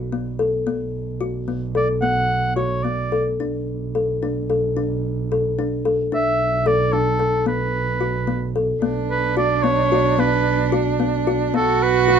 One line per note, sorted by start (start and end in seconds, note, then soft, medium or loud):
0.00 0.68 B1 medium
0.12 0.27 B3 medium
0.39 0.54 A4 medium
0.67 3.40 B1 medium
0.67 0.96 B3 medium
1.21 1.35 F#4 medium
1.48 1.63 B3 medium
1.75 1.90 A4 medium
1.75 1.88 D5 medium
2.01 2.32 B3 medium
2.01 2.53 F#5 medium
2.56 2.71 F#4 medium
2.56 2.85 C#5 medium
2.83 2.99 B3 medium
2.83 3.26 D5 medium
3.12 3.27 A4 medium
3.40 6.12 B1 medium
3.40 3.70 D4 medium
3.95 4.10 A4 medium
4.23 4.37 D4 medium
4.50 4.64 A4 medium
4.77 5.06 D4 medium
5.32 5.46 A4 medium
5.59 5.73 D4 medium
5.85 6.00 A4 medium
6.12 7.46 B1 medium
6.12 6.41 D4 medium
6.12 6.68 E5 medium
6.66 6.80 A4 medium
6.66 6.94 D5 medium
6.93 7.07 D4 medium
6.93 7.46 A4 medium
7.20 7.34 A4 medium
7.46 8.80 B1 medium
7.46 7.76 B3 medium
7.46 8.52 B4 medium
8.01 8.15 F#4 medium
8.27 8.42 B3 medium
8.56 8.70 A4 medium
8.82 11.54 B1 medium
8.82 9.12 B3 medium
8.82 11.56 D4 medium
9.10 9.36 B4 medium
9.37 9.52 F#4 medium
9.37 9.64 D5 medium
9.63 9.79 B3 medium
9.63 10.21 C#5 medium
9.92 10.07 F#4 medium
10.18 10.48 B3 medium
10.18 10.73 B4 medium
10.72 10.87 F#4 medium
11.00 11.14 B3 medium
11.27 11.42 F#4 medium
11.54 12.20 B1 medium
11.54 11.83 B3 medium
11.54 12.20 F#4 loud
11.54 11.84 A4 medium
11.83 12.20 B4 medium
12.08 12.20 F#4 medium